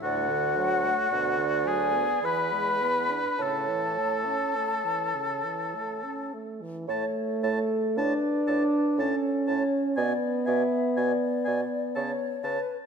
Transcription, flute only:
\new Staff \with { instrumentName = "Flute" } { \time 3/4 \key a \major \tempo 4 = 55 fis''4. gis''8 b''4 | a''2~ a''8 r8 | cis''8 a'8 b'4 a'8 cis''8 | d''8 e''8 d''4 cis''8 b'8 | }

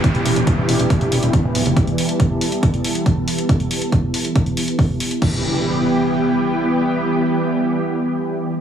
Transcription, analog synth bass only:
\new Staff \with { instrumentName = "Analog synth bass" } { \clef bass \time 4/4 \key e \minor \tempo 4 = 139 r16 e,,16 e,,16 e,,16 r16 e,,16 e,,16 e,,16 r16 e,,16 e,,16 e,,16 r16 e,,16 d,,16 fis,,16 | r1 | r1 | r1 |
r1 | }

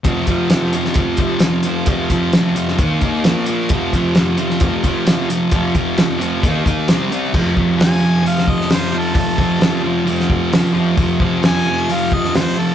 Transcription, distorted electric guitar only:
\new Staff \with { instrumentName = "Distorted electric guitar" } { \clef bass \time 4/4 \key f \major \tempo 4 = 132 <f, c f>8 <f, c f>8 <f, c f>8 <f, c f>8 <f, c f>8 <f, c f>8 <f, c f>8 <f, c f>8 | <f, c f>8 <f, c f>8 <f, c f>8 <f, c f>8 <ees bes ees'>8 <ees bes ees'>8 <bes, f bes>8 <bes, f bes>8 | <f, c f>8 <f, c f>8 <f, c f>8 <f, c f>8 <f, c f>8 <f, c f>8 <f, c f>8 <f, c f>8 | <f, c f>8 <f, c f>8 <f, c f>8 <f, c f>8 <ees bes ees'>8 <ees bes ees'>8 <c g c'>8 <c g c'>8 |
<f, c f>8 <c f>8 <f, c f>8 <c f>8 <f, c f>4 <f, c f>8 <c f>8 | <f, c f>8 <c f>8 <f, c f>8 <c f>8 <f, c f>4 <f, c f>8 <c f>8 | <f, c f>8 <c f>8 <f, c f>8 <c f>8 <f, c f>4 <f, c f>8 <c f>8 | }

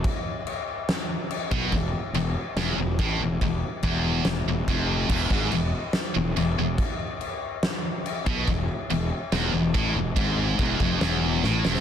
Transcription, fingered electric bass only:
\new Staff \with { instrumentName = "Fingered electric bass" } { \clef bass \time 4/4 \tempo 4 = 142 r2. r8 b,,8 | e,,8 r8 e,,8 r8 e,,8 e,,8 a,,8 e,,8 | e,,8 r8 e,,4 e,,8 e,,8 f,,4 | e,,8 gis,,8 e,,8 r4 e,,8 e,,8 e,,8 |
r2. r8 b,,8 | e,,8 r8 e,,8 r8 e,,8 e,,8 a,,8 e,,8 | gis,,4 e,,8 f,,8 e,,4 a,,8 e,,8 | }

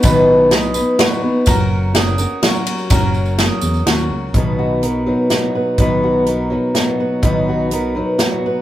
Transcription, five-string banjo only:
\new Staff \with { instrumentName = "Five-string banjo" } { \time 3/4 \key b \major \tempo 4 = 125 b'4 gis'4 fis'4 | ais'4 gis'4 fis'4 | ais'4 gis'4 fis'4 | r2. |
r2. | r2. | }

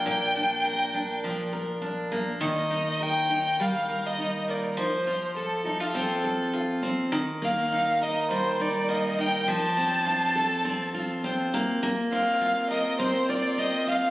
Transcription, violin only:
\new Staff \with { instrumentName = "Violin" } { \time 4/4 \key bes \major \tempo 4 = 102 g''2~ g''8 r4. | ees''4 g''4 f''8. ees''8. d''8 | c''4 a'4 a'4 r4 | r8 f''4 ees''8 c''8 d''8 ees''8 g''8 |
a''2. r4 | r8 f''4 ees''8 c''8 d''8 ees''8 f''8 | }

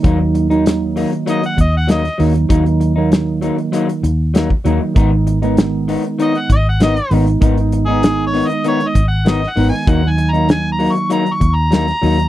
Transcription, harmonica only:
\new Staff \with { instrumentName = "Harmonica" } { \time 4/4 \key ees \minor \tempo 4 = 98 r2 ees''16 ges''16 ees''16 ges''16 ees''8 r8 | r1 | r2 ees''16 ges''16 ees''16 ges''16 ees''8 r8 | \tuplet 3/2 { r4 aes'8~ aes'8 des''8 ees''8 des''8 ees''8 ges''8 ees''8 ges''8 aes''8 } |
\tuplet 3/2 { ges''8 aes''8 bes''8 aes''8 bes''8 des'''8 bes''8 des'''8 bes''8~ } bes''4 | }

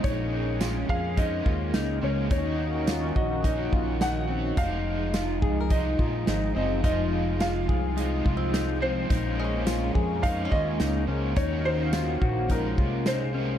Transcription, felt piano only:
\new Staff \with { instrumentName = "Felt piano" } { \time 4/4 \key bes \minor \tempo 4 = 106 des''4 r8 f''8 ees''4. des''8 | des''4 r8 ees''8 ees''4 ges''4 | f''2 ees''4. ees''8 | ees''4 f''2 r8 c''8~ |
c''4. r8 f''8 ees''4 r8 | des''8 c''4. bes'4 c''4 | }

